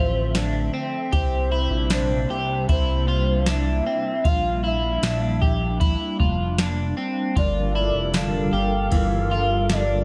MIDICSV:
0, 0, Header, 1, 7, 480
1, 0, Start_track
1, 0, Tempo, 779221
1, 696, Time_signature, 4, 2, 24, 8
1, 6185, End_track
2, 0, Start_track
2, 0, Title_t, "Soft synth lead"
2, 0, Program_c, 0, 80
2, 0, Note_on_c, 0, 72, 108
2, 469, Note_off_c, 0, 72, 0
2, 710, Note_on_c, 0, 72, 105
2, 1158, Note_off_c, 0, 72, 0
2, 1188, Note_on_c, 0, 72, 95
2, 1637, Note_off_c, 0, 72, 0
2, 1672, Note_on_c, 0, 72, 94
2, 2119, Note_off_c, 0, 72, 0
2, 2158, Note_on_c, 0, 76, 109
2, 2638, Note_on_c, 0, 77, 127
2, 2647, Note_off_c, 0, 76, 0
2, 2879, Note_on_c, 0, 76, 108
2, 2889, Note_off_c, 0, 77, 0
2, 3828, Note_off_c, 0, 76, 0
2, 4545, Note_on_c, 0, 74, 122
2, 5028, Note_on_c, 0, 77, 112
2, 5038, Note_off_c, 0, 74, 0
2, 5493, Note_off_c, 0, 77, 0
2, 5497, Note_on_c, 0, 77, 122
2, 5988, Note_on_c, 0, 74, 100
2, 5998, Note_off_c, 0, 77, 0
2, 6185, Note_off_c, 0, 74, 0
2, 6185, End_track
3, 0, Start_track
3, 0, Title_t, "Clean electric guitar"
3, 0, Program_c, 1, 27
3, 0, Note_on_c, 1, 65, 79
3, 217, Note_on_c, 1, 62, 77
3, 218, Note_off_c, 1, 65, 0
3, 451, Note_off_c, 1, 62, 0
3, 453, Note_on_c, 1, 60, 90
3, 692, Note_on_c, 1, 67, 104
3, 694, Note_off_c, 1, 60, 0
3, 932, Note_off_c, 1, 67, 0
3, 934, Note_on_c, 1, 64, 88
3, 1175, Note_off_c, 1, 64, 0
3, 1176, Note_on_c, 1, 62, 80
3, 1416, Note_off_c, 1, 62, 0
3, 1418, Note_on_c, 1, 67, 75
3, 1655, Note_off_c, 1, 67, 0
3, 1658, Note_on_c, 1, 64, 90
3, 1895, Note_off_c, 1, 64, 0
3, 1897, Note_on_c, 1, 65, 90
3, 2137, Note_off_c, 1, 65, 0
3, 2137, Note_on_c, 1, 62, 89
3, 2376, Note_off_c, 1, 62, 0
3, 2381, Note_on_c, 1, 60, 86
3, 2618, Note_off_c, 1, 60, 0
3, 2620, Note_on_c, 1, 65, 102
3, 2854, Note_off_c, 1, 65, 0
3, 2856, Note_on_c, 1, 64, 82
3, 3096, Note_off_c, 1, 64, 0
3, 3099, Note_on_c, 1, 62, 72
3, 3336, Note_on_c, 1, 67, 72
3, 3337, Note_off_c, 1, 62, 0
3, 3572, Note_off_c, 1, 67, 0
3, 3575, Note_on_c, 1, 64, 102
3, 3814, Note_off_c, 1, 64, 0
3, 3817, Note_on_c, 1, 65, 80
3, 4056, Note_off_c, 1, 65, 0
3, 4060, Note_on_c, 1, 62, 76
3, 4292, Note_off_c, 1, 62, 0
3, 4294, Note_on_c, 1, 60, 95
3, 4535, Note_off_c, 1, 60, 0
3, 4535, Note_on_c, 1, 65, 103
3, 4773, Note_off_c, 1, 65, 0
3, 4776, Note_on_c, 1, 64, 83
3, 5016, Note_off_c, 1, 64, 0
3, 5017, Note_on_c, 1, 62, 77
3, 5253, Note_on_c, 1, 67, 80
3, 5256, Note_off_c, 1, 62, 0
3, 5493, Note_on_c, 1, 52, 94
3, 5495, Note_off_c, 1, 67, 0
3, 5735, Note_off_c, 1, 52, 0
3, 5736, Note_on_c, 1, 65, 83
3, 5976, Note_off_c, 1, 65, 0
3, 5976, Note_on_c, 1, 62, 90
3, 6185, Note_off_c, 1, 62, 0
3, 6185, End_track
4, 0, Start_track
4, 0, Title_t, "Analog synth pad"
4, 0, Program_c, 2, 89
4, 0, Note_on_c, 2, 50, 75
4, 0, Note_on_c, 2, 53, 61
4, 0, Note_on_c, 2, 57, 66
4, 0, Note_on_c, 2, 60, 69
4, 0, Note_on_c, 2, 76, 71
4, 672, Note_off_c, 2, 53, 0
4, 678, Note_off_c, 2, 50, 0
4, 678, Note_off_c, 2, 57, 0
4, 680, Note_off_c, 2, 60, 0
4, 698, Note_on_c, 2, 48, 74
4, 698, Note_on_c, 2, 55, 68
4, 698, Note_on_c, 2, 58, 69
4, 699, Note_on_c, 2, 62, 69
4, 2596, Note_off_c, 2, 76, 0
4, 2598, Note_off_c, 2, 48, 0
4, 2598, Note_off_c, 2, 55, 0
4, 2609, Note_on_c, 2, 55, 76
4, 4512, Note_off_c, 2, 58, 0
4, 4513, Note_off_c, 2, 55, 0
4, 4533, Note_on_c, 2, 70, 87
4, 4535, Note_on_c, 2, 55, 78
4, 4535, Note_on_c, 2, 69, 75
4, 4536, Note_on_c, 2, 67, 69
4, 6185, Note_off_c, 2, 55, 0
4, 6185, Note_off_c, 2, 62, 0
4, 6185, Note_off_c, 2, 67, 0
4, 6185, Note_off_c, 2, 69, 0
4, 6185, Note_off_c, 2, 70, 0
4, 6185, End_track
5, 0, Start_track
5, 0, Title_t, "Clean electric guitar"
5, 0, Program_c, 3, 27
5, 4538, Note_on_c, 3, 43, 91
5, 4544, Note_on_c, 3, 50, 72
5, 4548, Note_on_c, 3, 53, 89
5, 4552, Note_on_c, 3, 58, 89
5, 4558, Note_on_c, 3, 65, 90
5, 4769, Note_off_c, 3, 65, 0
5, 4776, Note_on_c, 3, 65, 68
5, 4777, Note_off_c, 3, 43, 0
5, 4780, Note_off_c, 3, 50, 0
5, 4782, Note_off_c, 3, 53, 0
5, 4784, Note_off_c, 3, 58, 0
5, 4792, Note_on_c, 3, 58, 51
5, 4805, Note_on_c, 3, 53, 46
5, 5012, Note_on_c, 3, 43, 88
5, 5016, Note_off_c, 3, 53, 0
5, 5016, Note_off_c, 3, 65, 0
5, 5018, Note_on_c, 3, 50, 97
5, 5021, Note_off_c, 3, 58, 0
5, 5023, Note_on_c, 3, 53, 82
5, 5028, Note_on_c, 3, 58, 74
5, 5032, Note_on_c, 3, 65, 94
5, 5238, Note_off_c, 3, 65, 0
5, 5245, Note_on_c, 3, 65, 61
5, 5254, Note_off_c, 3, 43, 0
5, 5255, Note_off_c, 3, 58, 0
5, 5257, Note_off_c, 3, 50, 0
5, 5259, Note_off_c, 3, 53, 0
5, 5263, Note_on_c, 3, 58, 51
5, 5274, Note_on_c, 3, 53, 42
5, 5488, Note_on_c, 3, 50, 57
5, 5491, Note_off_c, 3, 65, 0
5, 5492, Note_off_c, 3, 53, 0
5, 5499, Note_off_c, 3, 58, 0
5, 5500, Note_on_c, 3, 53, 60
5, 5508, Note_on_c, 3, 58, 61
5, 5726, Note_on_c, 3, 65, 56
5, 5732, Note_off_c, 3, 50, 0
5, 5736, Note_off_c, 3, 58, 0
5, 5738, Note_off_c, 3, 53, 0
5, 5744, Note_on_c, 3, 58, 47
5, 5755, Note_on_c, 3, 53, 49
5, 5971, Note_off_c, 3, 65, 0
5, 5971, Note_on_c, 3, 43, 86
5, 5974, Note_off_c, 3, 53, 0
5, 5974, Note_on_c, 3, 50, 80
5, 5980, Note_off_c, 3, 58, 0
5, 5981, Note_on_c, 3, 53, 84
5, 5986, Note_on_c, 3, 58, 90
5, 5992, Note_on_c, 3, 65, 98
5, 6185, Note_off_c, 3, 43, 0
5, 6185, Note_off_c, 3, 50, 0
5, 6185, Note_off_c, 3, 53, 0
5, 6185, Note_off_c, 3, 58, 0
5, 6185, Note_off_c, 3, 65, 0
5, 6185, End_track
6, 0, Start_track
6, 0, Title_t, "Analog synth bass"
6, 0, Program_c, 4, 38
6, 0, Note_on_c, 4, 33, 93
6, 432, Note_off_c, 4, 33, 0
6, 695, Note_on_c, 4, 36, 104
6, 1037, Note_off_c, 4, 36, 0
6, 1051, Note_on_c, 4, 34, 99
6, 1395, Note_off_c, 4, 34, 0
6, 1416, Note_on_c, 4, 36, 80
6, 1644, Note_off_c, 4, 36, 0
6, 1656, Note_on_c, 4, 36, 102
6, 2351, Note_off_c, 4, 36, 0
6, 2616, Note_on_c, 4, 34, 115
6, 3072, Note_off_c, 4, 34, 0
6, 3098, Note_on_c, 4, 34, 109
6, 3672, Note_off_c, 4, 34, 0
6, 3821, Note_on_c, 4, 29, 97
6, 4275, Note_off_c, 4, 29, 0
6, 4538, Note_on_c, 4, 31, 99
6, 4879, Note_off_c, 4, 31, 0
6, 4895, Note_on_c, 4, 29, 86
6, 5237, Note_off_c, 4, 29, 0
6, 5251, Note_on_c, 4, 31, 78
6, 5481, Note_off_c, 4, 31, 0
6, 5497, Note_on_c, 4, 31, 110
6, 6185, Note_off_c, 4, 31, 0
6, 6185, End_track
7, 0, Start_track
7, 0, Title_t, "Drums"
7, 214, Note_on_c, 9, 38, 99
7, 214, Note_on_c, 9, 54, 64
7, 216, Note_on_c, 9, 51, 57
7, 275, Note_off_c, 9, 54, 0
7, 276, Note_off_c, 9, 38, 0
7, 277, Note_off_c, 9, 51, 0
7, 694, Note_on_c, 9, 51, 54
7, 696, Note_on_c, 9, 36, 93
7, 755, Note_off_c, 9, 51, 0
7, 757, Note_off_c, 9, 36, 0
7, 1170, Note_on_c, 9, 51, 78
7, 1173, Note_on_c, 9, 38, 123
7, 1174, Note_on_c, 9, 54, 75
7, 1232, Note_off_c, 9, 51, 0
7, 1235, Note_off_c, 9, 38, 0
7, 1235, Note_off_c, 9, 54, 0
7, 1656, Note_on_c, 9, 51, 56
7, 1657, Note_on_c, 9, 36, 89
7, 1718, Note_off_c, 9, 51, 0
7, 1719, Note_off_c, 9, 36, 0
7, 2133, Note_on_c, 9, 54, 63
7, 2134, Note_on_c, 9, 38, 94
7, 2135, Note_on_c, 9, 51, 60
7, 2195, Note_off_c, 9, 54, 0
7, 2196, Note_off_c, 9, 38, 0
7, 2197, Note_off_c, 9, 51, 0
7, 2618, Note_on_c, 9, 36, 94
7, 2618, Note_on_c, 9, 51, 58
7, 2679, Note_off_c, 9, 36, 0
7, 2680, Note_off_c, 9, 51, 0
7, 3098, Note_on_c, 9, 51, 71
7, 3101, Note_on_c, 9, 38, 123
7, 3101, Note_on_c, 9, 54, 68
7, 3159, Note_off_c, 9, 51, 0
7, 3162, Note_off_c, 9, 38, 0
7, 3163, Note_off_c, 9, 54, 0
7, 3339, Note_on_c, 9, 36, 91
7, 3401, Note_off_c, 9, 36, 0
7, 3578, Note_on_c, 9, 51, 57
7, 3580, Note_on_c, 9, 36, 92
7, 3640, Note_off_c, 9, 51, 0
7, 3641, Note_off_c, 9, 36, 0
7, 3819, Note_on_c, 9, 36, 84
7, 3881, Note_off_c, 9, 36, 0
7, 4055, Note_on_c, 9, 54, 63
7, 4056, Note_on_c, 9, 38, 101
7, 4057, Note_on_c, 9, 51, 56
7, 4117, Note_off_c, 9, 54, 0
7, 4118, Note_off_c, 9, 38, 0
7, 4119, Note_off_c, 9, 51, 0
7, 4537, Note_on_c, 9, 36, 91
7, 4538, Note_on_c, 9, 51, 54
7, 4599, Note_off_c, 9, 36, 0
7, 4600, Note_off_c, 9, 51, 0
7, 5012, Note_on_c, 9, 51, 67
7, 5015, Note_on_c, 9, 38, 122
7, 5016, Note_on_c, 9, 54, 73
7, 5074, Note_off_c, 9, 51, 0
7, 5077, Note_off_c, 9, 38, 0
7, 5077, Note_off_c, 9, 54, 0
7, 5492, Note_on_c, 9, 51, 68
7, 5496, Note_on_c, 9, 36, 77
7, 5554, Note_off_c, 9, 51, 0
7, 5558, Note_off_c, 9, 36, 0
7, 5972, Note_on_c, 9, 38, 96
7, 5972, Note_on_c, 9, 54, 65
7, 5974, Note_on_c, 9, 51, 57
7, 6033, Note_off_c, 9, 54, 0
7, 6034, Note_off_c, 9, 38, 0
7, 6035, Note_off_c, 9, 51, 0
7, 6185, End_track
0, 0, End_of_file